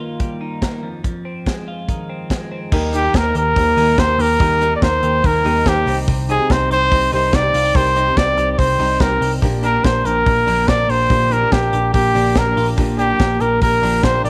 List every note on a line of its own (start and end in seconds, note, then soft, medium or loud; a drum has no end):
0.00 1.07 D#3 medium
0.00 0.61 A#3 medium
0.00 0.40 D#4 medium
0.00 0.87 F4 medium
0.20 0.87 G3 medium
0.20 kick loud
0.20 closed hi-hat medium
0.41 1.07 D#4 medium
0.62 0.87 A#3 medium
0.62 kick medium
0.62 snare medium
0.62 closed hi-hat medium
0.83 1.03 F2 medium
1.04 2.72 F2 medium
1.04 kick loud
1.04 closed hi-hat medium
1.25 2.08 C4 medium
1.46 2.30 G#3 soft
1.46 kick loud
1.46 snare medium
1.46 closed hi-hat medium
1.68 2.77 F4 medium
1.89 2.72 D#3 medium
1.89 kick loud
1.89 closed hi-hat medium
2.10 2.50 C4 medium
2.30 2.77 G#3 medium
2.30 kick medium
2.30 snare medium
2.30 closed hi-hat medium
2.52 2.77 C4 medium
2.72 3.07 D#2 loud
2.72 3.04 D#3 medium
2.72 4.40 D#3 medium
2.72 3.04 G3 medium
2.72 3.04 A#3 medium
2.72 2.88 D#4 loud
2.72 3.04 D#4 medium
2.72 2.88 G4 loud
2.72 3.02 G4 medium
2.72 2.88 A#4 loud
2.72 kick loud
2.72 crash medium
2.92 3.08 D#4 medium
2.92 3.77 D#4 medium
2.92 3.09 G4 medium
2.92 3.18 G4 medium
2.92 3.09 A#4 loud
2.92 hi-hat pedal medium
2.92 open hi-hat medium
3.04 3.56 A#3 soft
3.04 3.57 D#4 medium
3.04 3.58 G4 soft
3.13 3.32 D#2 medium
3.13 3.55 A#3 medium
3.13 3.29 D#4 medium
3.13 3.36 A#4 medium
3.13 3.30 C5 medium
3.13 kick loud
3.13 snare loud
3.13 hi-hat pedal medium
3.13 open hi-hat medium
3.34 3.52 D#2 medium
3.34 3.50 D#4 medium
3.34 3.50 G4 medium
3.34 4.19 G4 medium
3.34 3.51 A#4 medium
3.34 4.01 A#4 loud
3.34 hi-hat pedal medium
3.34 open hi-hat medium
3.56 3.73 D#2 loud
3.56 3.75 G3 medium
3.56 3.97 A#3 medium
3.56 3.76 A#3 medium
3.56 3.71 D#4 medium
3.56 3.76 D#4 medium
3.56 3.72 G4 medium
3.56 3.77 G4 medium
3.56 3.72 C5 medium
3.56 kick loud
3.56 hi-hat pedal medium
3.56 open hi-hat medium
3.76 3.94 D#2 loud
3.76 4.08 D#3 medium
3.76 4.08 G3 medium
3.76 4.09 A#3 medium
3.76 3.92 D#4 medium
3.76 4.61 D#4 medium
3.76 4.07 D#4 medium
3.76 3.93 G4 medium
3.76 4.06 G4 medium
3.76 3.93 A#4 medium
3.76 hi-hat pedal medium
3.76 open hi-hat medium
3.97 4.15 D#2 loud
3.97 4.81 A#3 medium
3.97 4.13 D#4 medium
3.97 4.13 G4 medium
3.97 4.14 A#4 loud
3.97 4.23 C5 loud
3.97 kick loud
3.97 snare loud
3.97 hi-hat pedal medium
3.97 open hi-hat medium
4.07 4.38 A#3 soft
4.07 4.39 D#4 medium
4.07 4.39 G4 medium
4.18 4.36 D#2 loud
4.18 4.34 D#4 medium
4.18 4.34 G4 medium
4.18 5.03 G4 medium
4.18 4.35 A#4 medium
4.18 4.75 A#4 loud
4.18 hi-hat pedal medium
4.18 open hi-hat medium
4.39 4.74 D#2 loud
4.39 4.71 D#3 medium
4.39 7.58 D#3 medium
4.39 4.71 G3 medium
4.39 4.71 A#3 medium
4.39 4.55 D#4 medium
4.39 4.70 D#4 medium
4.39 4.55 G4 medium
4.39 4.69 G4 medium
4.39 4.56 A#4 loud
4.39 kick loud
4.39 hi-hat pedal medium
4.39 open hi-hat medium
4.61 4.76 D#4 medium
4.61 5.45 D#4 medium
4.61 4.76 G4 medium
4.61 4.77 A#4 loud
4.61 hi-hat pedal medium
4.61 open hi-hat medium
4.70 5.22 A#3 soft
4.70 5.23 D#4 soft
4.70 5.24 G4 medium
4.76 4.84 D5 medium
4.82 4.99 D#2 loud
4.82 5.23 A#3 medium
4.82 4.97 D#4 medium
4.82 5.27 C5 medium
4.82 4.98 C5 medium
4.82 kick loud
4.82 snare loud
4.82 hi-hat pedal medium
4.82 open hi-hat medium
5.02 5.20 D#2 loud
5.02 5.18 D#4 medium
5.02 5.18 G4 medium
5.02 6.70 G4 medium
5.02 5.19 A#4 medium
5.02 hi-hat pedal medium
5.02 open hi-hat medium
5.22 5.41 D#2 medium
5.22 5.43 G3 medium
5.22 5.44 A#3 medium
5.22 5.66 A#3 medium
5.22 5.39 D#4 medium
5.22 5.44 D#4 medium
5.22 5.39 G4 medium
5.22 5.45 G4 medium
5.22 5.40 A#4 medium
5.22 5.69 A#4 loud
5.22 kick loud
5.22 hi-hat pedal medium
5.22 open hi-hat medium
5.44 5.62 D#2 loud
5.44 5.76 D#3 medium
5.44 5.76 G3 medium
5.44 5.76 A#3 medium
5.44 5.60 D#4 medium
5.44 5.75 D#4 medium
5.44 6.29 D#4 medium
5.44 5.60 G4 medium
5.44 5.74 G4 medium
5.44 hi-hat pedal medium
5.44 open hi-hat medium
5.65 5.83 D#2 loud
5.65 5.91 A#3 medium
5.65 5.81 D#4 medium
5.65 5.81 G4 medium
5.65 5.98 G4 loud
5.65 5.82 C5 loud
5.65 kick loud
5.65 snare loud
5.65 hi-hat pedal medium
5.65 open hi-hat medium
5.77 5.87 A#3 soft
5.77 5.86 D#4 medium
5.86 6.38 C2 loud
5.86 6.39 C3 medium
5.86 6.07 C3 medium
5.86 6.91 G3 medium
5.86 6.39 C4 medium
5.86 6.20 D#4 medium
5.86 6.39 D#4 medium
5.86 6.38 G4 medium
5.86 6.21 C5 medium
5.86 hi-hat pedal medium
5.86 open hi-hat medium
6.08 7.75 C3 medium
6.08 kick loud
6.08 hi-hat pedal medium
6.08 open hi-hat medium
6.29 6.44 D#4 loud
6.29 7.11 D#4 medium
6.29 6.44 G4 medium
6.29 6.53 G#4 loud
6.29 6.44 C5 loud
6.29 hi-hat pedal medium
6.29 open hi-hat medium
6.38 6.91 C4 soft
6.38 6.92 D#4 soft
6.38 6.93 G4 medium
6.49 6.67 C2 loud
6.49 6.91 C4 medium
6.49 6.65 D#4 medium
6.49 6.65 G4 medium
6.49 6.71 C5 medium
6.49 6.65 D#5 medium
6.49 kick loud
6.49 snare loud
6.49 hi-hat pedal medium
6.49 open hi-hat medium
6.70 6.87 C2 loud
6.70 6.86 D#4 medium
6.70 7.55 G4 medium
6.70 6.86 G4 medium
6.70 6.86 C5 medium
6.70 7.10 C5 loud
6.70 hi-hat pedal medium
6.70 open hi-hat medium
6.91 7.09 C2 loud
6.91 7.11 G3 medium
6.91 7.33 C4 medium
6.91 7.11 C4 medium
6.91 7.07 D#4 medium
6.91 7.12 D#4 medium
6.91 7.07 G4 medium
6.91 7.12 G4 medium
6.91 7.07 C5 medium
6.91 kick loud
6.91 hi-hat pedal medium
6.91 open hi-hat medium
7.12 7.30 C2 loud
7.12 7.44 C3 medium
7.12 7.44 G3 medium
7.12 7.44 C4 medium
7.12 7.27 D#4 medium
7.12 7.95 D#4 medium
7.12 7.43 D#4 medium
7.12 7.28 G4 medium
7.12 7.42 G4 medium
7.12 7.28 A#4 medium
7.12 7.36 C5 loud
7.12 hi-hat pedal medium
7.12 open hi-hat medium
7.33 7.50 C2 medium
7.33 8.16 C4 medium
7.33 7.48 D#4 medium
7.33 7.49 G4 medium
7.33 7.49 C5 loud
7.33 7.77 D5 loud
7.33 kick loud
7.33 snare loud
7.33 hi-hat pedal medium
7.33 open hi-hat medium
7.43 7.74 C4 soft
7.43 7.75 D#4 soft
7.43 7.75 G4 medium
7.53 7.71 C2 loud
7.53 7.69 D#4 medium
7.53 7.65 F4 medium
7.53 hi-hat pedal medium
7.53 open hi-hat medium
7.65 8.37 G4 medium
7.74 8.09 C2 loud
7.74 8.06 C3 medium
7.74 9.42 C3 medium
7.74 8.07 G3 medium
7.74 8.07 C4 medium
7.74 7.90 D#4 medium
7.74 8.06 D#4 medium
7.74 7.90 G4 medium
7.74 8.05 G4 medium
7.74 7.90 A#4 loud
7.74 8.19 C5 loud
7.74 kick loud
7.74 hi-hat pedal medium
7.74 open hi-hat medium
7.95 8.11 D#4 medium
7.95 8.78 D#4 medium
7.95 8.11 G4 medium
7.95 8.12 C5 loud
7.95 hi-hat pedal medium
7.95 open hi-hat medium
8.06 8.58 C4 soft
8.06 8.59 D#4 soft
8.06 8.60 G4 medium
8.16 8.34 C2 loud
8.16 8.57 C4 medium
8.16 8.32 D#4 medium
8.16 8.52 D5 loud
8.16 8.32 D5 medium
8.16 kick loud
8.16 snare loud
8.16 hi-hat pedal medium
8.16 open hi-hat medium
8.37 8.54 C2 loud
8.37 8.52 D#4 medium
8.37 8.53 G4 medium
8.37 9.21 G4 medium
8.37 8.53 C5 medium
8.37 hi-hat pedal medium
8.37 open hi-hat medium
8.52 8.60 D5 medium
8.57 8.76 C2 loud
8.57 8.78 G3 medium
8.57 8.99 C4 medium
8.57 8.78 C4 medium
8.57 8.73 D#4 medium
8.57 8.79 D#4 medium
8.57 8.74 G4 medium
8.57 8.79 G4 medium
8.57 9.02 C5 loud
8.57 8.74 C5 medium
8.57 kick loud
8.57 hi-hat pedal medium
8.57 open hi-hat medium
8.79 8.97 C2 loud
8.79 9.10 C3 medium
8.79 9.11 G3 medium
8.79 9.11 C4 medium
8.79 8.95 D#4 medium
8.79 9.46 D#4 medium
8.79 9.11 D#4 medium
8.79 8.95 G4 medium
8.79 9.10 G4 medium
8.79 8.95 D#5 medium
8.79 hi-hat pedal medium
8.79 open hi-hat medium
9.00 9.18 C2 medium
9.00 9.46 C4 medium
9.00 9.15 D#4 medium
9.00 9.16 G4 medium
9.00 9.32 A#4 loud
9.00 9.16 C5 medium
9.00 kick loud
9.00 snare loud
9.00 hi-hat pedal medium
9.00 open hi-hat medium
9.11 9.43 C4 soft
9.11 9.43 D#4 soft
9.11 9.42 G4 medium
9.20 9.38 C2 medium
9.20 9.36 D#4 medium
9.20 9.37 G4 medium
9.20 10.05 G4 medium
9.20 hi-hat pedal medium
9.20 open hi-hat medium
9.41 9.77 A#1 loud
9.41 9.74 A#2 medium
9.41 11.09 A#2 medium
9.41 9.74 D3 medium
9.41 9.74 F3 medium
9.41 9.74 A#3 loud
9.41 9.57 D4 loud
9.41 9.74 D4 medium
9.41 9.57 G4 loud
9.41 9.73 G4 loud
9.41 9.58 A#4 loud
9.41 kick loud
9.41 hi-hat pedal medium
9.41 open hi-hat medium
9.62 9.78 D4 medium
9.62 10.46 D4 medium
9.62 9.78 G4 medium
9.62 9.79 A#4 loud
9.62 9.86 A#4 loud
9.62 hi-hat pedal medium
9.62 open hi-hat medium
9.74 10.25 F3 soft
9.74 10.26 A#3 soft
9.74 10.27 D4 medium
9.74 10.28 G4 medium
9.82 10.02 A#1 medium
9.82 10.26 A#3 medium
9.82 9.99 D4 medium
9.82 9.99 G4 medium
9.82 9.99 A#4 medium
9.82 10.07 C5 medium
9.82 kick loud
9.82 snare loud
9.82 hi-hat pedal medium
9.82 open hi-hat medium
10.04 10.22 A#1 medium
10.04 10.20 D4 medium
10.04 10.20 G4 medium
10.04 10.88 G4 medium
10.04 10.20 A#4 medium
10.04 10.70 A#4 loud
10.04 hi-hat pedal medium
10.04 open hi-hat medium
10.24 10.44 A#1 loud
10.24 10.46 F3 medium
10.24 10.67 A#3 medium
10.24 10.47 A#3 medium
10.24 10.41 D4 medium
10.24 10.47 D4 medium
10.24 10.41 G4 medium
10.24 kick loud
10.24 hi-hat pedal medium
10.24 open hi-hat medium
10.29 10.47 G4 medium
10.45 10.64 A#1 medium
10.45 10.78 A#2 medium
10.45 10.79 D3 medium
10.45 10.79 F3 medium
10.45 10.79 A#3 medium
10.45 10.62 D4 medium
10.45 11.30 D4 medium
10.45 10.78 D4 medium
10.45 10.62 G4 medium
10.45 10.77 G4 medium
10.45 hi-hat pedal medium
10.45 open hi-hat medium
10.67 10.85 A#1 loud
10.67 11.52 A#3 medium
10.67 10.83 D4 loud
10.67 10.83 G4 medium
10.67 10.83 C5 loud
10.67 10.91 D5 loud
10.67 kick loud
10.67 snare loud
10.67 hi-hat pedal medium
10.67 open hi-hat medium
10.78 11.09 F3 soft
10.78 11.09 A#3 soft
10.78 11.10 D4 medium
10.78 11.10 G4 medium
10.88 11.06 A#1 medium
10.88 11.04 D4 medium
10.88 11.73 G4 medium
10.88 11.04 G4 medium
10.88 11.05 A#4 medium
10.88 11.34 C5 loud
10.88 hi-hat pedal medium
10.88 open hi-hat medium
11.09 11.44 A#1 loud
11.09 11.41 A#2 medium
11.09 12.77 A#2 medium
11.09 11.41 D3 medium
11.09 11.42 F3 medium
11.09 11.42 A#3 medium
11.09 11.25 D4 medium
11.09 11.41 D4 medium
11.09 11.25 G4 medium
11.09 11.40 G4 medium
11.09 11.26 A#4 loud
11.09 kick loud
11.09 hi-hat pedal medium
11.09 open hi-hat medium
11.30 11.46 D4 loud
11.30 12.14 D4 medium
11.30 11.46 G4 medium
11.30 11.47 A#4 loud
11.30 11.54 A#4 loud
11.30 hi-hat pedal medium
11.30 open hi-hat medium
11.41 11.92 F3 soft
11.41 11.93 A#3 soft
11.41 11.93 D4 medium
11.41 11.95 G4 medium
11.51 11.69 A#1 medium
11.51 11.94 A#3 medium
11.51 11.67 D4 medium
11.51 11.67 G4 medium
11.51 11.93 G4 medium
11.51 11.68 A#4 medium
11.51 kick loud
11.51 snare loud
11.51 hi-hat pedal medium
11.51 open hi-hat medium
11.72 11.90 A#1 medium
11.72 11.88 D4 medium
11.72 12.57 G4 medium
11.72 11.88 G4 medium
11.72 11.89 A#4 medium
11.72 hi-hat pedal medium
11.72 open hi-hat medium
11.93 12.11 A#1 loud
11.93 12.14 F3 medium
11.93 12.14 A#3 medium
11.93 12.36 A#3 medium
11.93 12.09 D4 medium
11.93 12.14 D4 medium
11.93 12.39 G4 loud
11.93 12.09 G4 medium
11.93 12.14 G4 medium
11.93 12.09 A#4 medium
11.93 kick loud
11.93 hi-hat pedal medium
11.93 open hi-hat medium
12.14 12.32 A#1 loud
12.14 12.46 A#2 medium
12.14 12.46 D3 medium
12.14 12.46 F3 medium
12.14 12.45 A#3 medium
12.14 12.30 D4 medium
12.14 12.98 D4 medium
12.14 12.44 D4 medium
12.14 12.30 G4 medium
12.14 12.44 G4 medium
12.14 12.30 A#4 medium
12.14 hi-hat pedal medium
12.14 open hi-hat medium
12.35 12.53 A#1 loud
12.35 13.20 A#3 medium
12.35 12.51 D4 loud
12.35 12.51 G4 medium
12.35 12.51 A#4 loud
12.35 12.68 A#4 medium
12.35 kick loud
12.35 snare loud
12.35 hi-hat pedal medium
12.35 open hi-hat medium
12.45 12.77 F3 soft
12.45 12.77 A#3 soft
12.45 12.77 D4 medium
12.45 12.77 G4 medium
12.56 12.74 A#1 medium
12.56 12.72 D4 medium
12.56 12.68 F4 medium
12.56 12.72 G4 medium
12.56 12.72 A#4 medium
12.56 hi-hat pedal medium
12.56 open hi-hat medium
12.68 13.40 G4 medium
12.77 13.12 A#1 loud
12.77 13.09 A#2 medium
12.77 14.30 A#2 medium
12.77 13.09 D3 medium
12.77 13.09 F3 medium
12.77 13.09 A#3 medium
12.77 12.92 D4 loud
12.77 13.09 D4 loud
12.77 12.93 G4 loud
12.77 13.07 G4 medium
12.77 12.93 A#4 loud
12.77 kick loud
12.77 hi-hat pedal medium
12.77 open hi-hat medium
12.98 13.13 D4 loud
12.98 13.82 D4 medium
12.98 13.42 G4 loud
12.98 13.14 G4 medium
12.98 13.14 A#4 loud
12.98 hi-hat pedal medium
12.98 open hi-hat medium
13.09 13.60 F3 soft
13.09 13.62 A#3 soft
13.09 13.62 D4 medium
13.09 13.63 G4 medium
13.19 13.37 A#1 medium
13.19 13.62 A#3 medium
13.19 13.34 D4 medium
13.19 13.35 G4 medium
13.19 13.35 A#4 medium
13.19 kick loud
13.19 snare loud
13.19 hi-hat pedal medium
13.19 open hi-hat medium
13.39 13.58 A#1 medium
13.39 13.55 D4 medium
13.39 13.56 G4 medium
13.39 14.24 G4 medium
13.39 13.62 A#4 medium
13.39 13.56 A#4 medium
13.39 hi-hat pedal medium
13.39 open hi-hat medium
13.61 13.79 A#1 loud
13.61 13.82 F3 medium
13.61 13.82 A#3 medium
13.61 14.03 A#3 medium
13.61 13.76 D4 medium
13.61 13.83 D4 medium
13.61 13.76 G4 medium
13.61 13.83 G4 medium
13.61 14.05 A#4 loud
13.61 kick loud
13.61 hi-hat pedal medium
13.61 open hi-hat medium
13.81 14.00 A#1 loud
13.81 14.14 A#2 medium
13.81 14.14 D3 medium
13.81 14.14 F3 medium
13.81 14.14 A#3 medium
13.81 13.97 D4 medium
13.81 14.30 D4 medium
13.81 14.13 D4 loud
13.81 13.97 G4 medium
13.81 14.12 G4 medium
13.81 hi-hat pedal medium
13.81 open hi-hat medium
14.02 14.21 A#1 loud
14.02 14.30 A#3 medium
14.02 14.18 D4 loud
14.02 14.18 G4 medium
14.02 14.19 C5 loud
14.02 14.24 C5 loud
14.02 kick loud
14.02 snare loud
14.02 hi-hat pedal medium
14.02 open hi-hat medium
14.14 14.30 F3 soft
14.14 14.30 A#3 soft
14.14 14.30 D4 medium
14.14 14.30 G4 medium
14.24 14.30 A#1 medium
14.24 14.30 D4 medium
14.24 14.30 G4 medium
14.24 14.30 A#4 medium
14.24 14.30 D5 loud
14.24 hi-hat pedal medium
14.24 open hi-hat medium